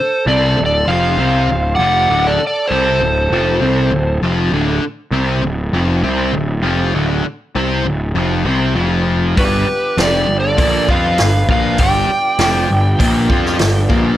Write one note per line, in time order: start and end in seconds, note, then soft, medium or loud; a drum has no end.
0.00 0.24 A4 medium
0.00 0.28 C5 medium
0.26 0.56 C2 medium
0.26 0.58 C3 medium
0.26 0.58 C4 loud
0.26 0.63 A4 medium
0.26 0.65 D5 medium
0.56 0.86 D1 medium
0.56 0.83 D2 medium
0.64 0.85 A4 medium
0.64 0.86 D5 medium
0.85 1.17 F1 medium
0.85 1.18 F2 medium
0.85 1.19 F3 medium
0.85 1.75 C5 medium
0.85 1.83 F5 medium
1.18 1.47 C2 medium
1.18 1.49 C3 medium
1.18 1.49 C4 medium
1.48 1.77 D1 medium
1.48 1.74 D2 medium
1.75 2.08 F1 medium
1.75 2.09 F2 medium
1.75 2.25 D5 medium
1.75 2.30 F#5 loud
1.80 2.10 F3 loud
2.10 2.39 D1 medium
2.10 2.40 D2 medium
2.10 2.40 D3 loud
2.27 2.46 A4 medium
2.27 2.46 D5 medium
2.41 muted picked electric bass stroke soft
2.41 muted overdriven electric guitar stroke medium
2.47 2.65 A4 medium
2.47 2.70 D5 medium
2.66 4.17 A4 medium
2.66 4.17 C5 medium
2.71 2.99 C2 medium
2.71 3.01 C3 medium
2.71 3.01 C4 loud
3.00 3.29 D1 medium
3.00 3.26 D2 medium
3.31 3.60 F1 loud
3.31 3.60 F2 medium
3.31 3.61 F3 medium
3.61 3.90 C2 medium
3.61 3.91 C3 medium
3.61 3.92 C4 medium
3.91 4.20 D1 medium
3.91 4.17 D2 medium
4.22 4.51 F1 medium
4.22 4.52 F2 medium
4.22 4.53 F3 loud
4.52 4.81 D1 medium
4.52 4.82 D2 medium
4.52 4.83 D3 loud
4.82 muted picked electric bass stroke soft
4.82 muted overdriven electric guitar stroke medium
5.11 5.41 C2 medium
5.11 5.43 C3 medium
5.11 5.43 C4 medium
5.42 5.72 D1 medium
5.42 5.68 D2 medium
5.73 6.02 F1 medium
5.73 6.03 F2 medium
5.73 6.03 F3 medium
6.03 6.32 C2 medium
6.03 6.33 C3 medium
6.03 6.34 C4 medium
6.33 6.62 D1 medium
6.33 6.58 D2 medium
6.63 6.92 F1 medium
6.63 6.94 F2 medium
6.63 6.94 F3 loud
6.94 7.23 D1 medium
6.94 7.24 D2 medium
6.94 7.25 D3 medium
7.25 muted picked electric bass stroke soft
7.25 muted overdriven electric guitar stroke medium
7.55 7.84 C2 medium
7.55 7.84 C3 medium
7.55 7.85 C4 loud
7.85 8.14 D1 medium
7.85 8.10 D2 medium
8.15 8.44 F1 loud
8.15 8.45 F2 medium
8.15 8.46 F3 medium
8.45 8.74 C2 medium
8.45 8.75 C3 medium
8.45 8.76 C4 medium
8.75 9.33 F1 medium
8.75 9.36 F2 medium
8.75 9.36 F3 medium
9.36 9.66 G1 medium
9.36 9.66 G2 medium
9.36 9.67 G3 medium
9.36 9.95 G4 medium
9.36 10.01 B4 medium
9.36 kick loud
9.36 open hi-hat soft
9.40 11.79 B3 medium
9.40 11.79 D4 medium
9.40 11.79 F4 medium
9.40 11.79 G4 medium
9.67 muted picked electric bass stroke soft
9.67 muted overdriven electric guitar stroke soft
9.97 10.26 F1 medium
9.97 10.27 F2 medium
9.97 10.28 F3 medium
9.97 10.36 G4 medium
9.97 10.39 D5 medium
9.97 snare loud
9.97 open hi-hat soft
10.27 10.56 G1 medium
10.27 10.52 G2 medium
10.40 10.86 A4 medium
10.40 10.91 D5 medium
10.57 10.87 A#1 medium
10.57 10.87 A#2 medium
10.57 10.88 A#3 loud
10.57 kick loud
10.57 open hi-hat medium
10.88 11.17 F2 medium
10.88 11.18 F3 medium
10.88 11.19 F4 loud
10.88 11.47 B4 medium
10.88 11.46 F5 medium
10.88 kick medium
11.18 11.47 G1 medium
11.18 11.43 G2 medium
11.18 snare loud
11.18 open hi-hat soft
11.49 11.77 A#1 loud
11.49 11.78 A#2 medium
11.49 11.79 A#3 loud
11.49 11.79 B4 medium
11.49 11.80 F5 loud
11.49 kick loud
11.78 12.08 G1 medium
11.78 12.09 G2 medium
11.78 12.10 G3 medium
11.78 14.17 B3 medium
11.78 14.17 D4 medium
11.78 13.88 D5 medium
11.78 13.87 G5 loud
11.78 kick loud
11.78 open hi-hat soft
11.82 14.17 G3 medium
11.82 14.17 F4 medium
12.09 muted picked electric bass stroke soft
12.09 muted overdriven electric guitar stroke medium
12.39 12.68 F1 medium
12.39 12.69 F2 medium
12.39 12.69 F3 loud
12.39 snare loud
12.39 open hi-hat medium
12.69 12.98 G1 medium
12.69 12.94 G2 medium
12.99 13.28 A#1 medium
12.99 13.29 A#2 medium
12.99 13.29 A#3 medium
12.99 kick loud
12.99 open hi-hat medium
13.29 13.58 F2 medium
13.29 13.59 F3 medium
13.29 13.60 F4 medium
13.29 kick loud
13.46 snare soft
13.59 13.88 G1 medium
13.59 13.84 G2 medium
13.59 snare loud
13.59 open hi-hat medium
13.89 14.17 A#1 medium
13.89 14.17 A#2 medium
13.89 14.17 A#3 loud
13.89 kick medium